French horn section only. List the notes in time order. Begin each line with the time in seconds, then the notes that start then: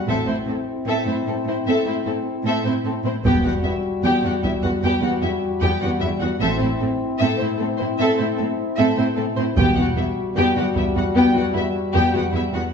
0.07 C4 E4
3.24 G3 F#4
6.41 C4 E4
9.57 G3 F#4